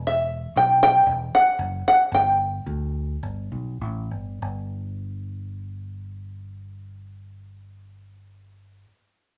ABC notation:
X:1
M:4/4
L:1/8
Q:1/4=96
K:G
V:1 name="Five-string banjo"
e2 g g2 f2 f | g6 z2 | z8 | z8 |]
V:2 name="Fingered electric bass" clef=bass
E,,,2 B,,,2 E,,, z F,,, z | G,,,2 D,,2 G,,, B,,, A,,, G,,, | G,,,8- | G,,,8 |]